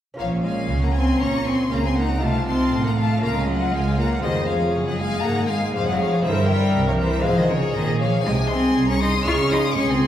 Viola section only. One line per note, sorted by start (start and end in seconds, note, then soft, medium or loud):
0.19 1.17 C#4 medium
1.21 1.70 C#4 medium
1.71 1.79 C#4 medium
1.97 2.22 D#4 medium
2.22 3.22 F4 medium
3.23 4.22 F4 medium
4.25 5.74 G#4 medium
5.76 6.25 G#4 medium
6.26 7.26 A#4 medium
7.26 8.24 G#4 loud
8.28 9.25 G#4 medium
9.28 9.76 G#4 medium
9.78 10.07 G#4 loud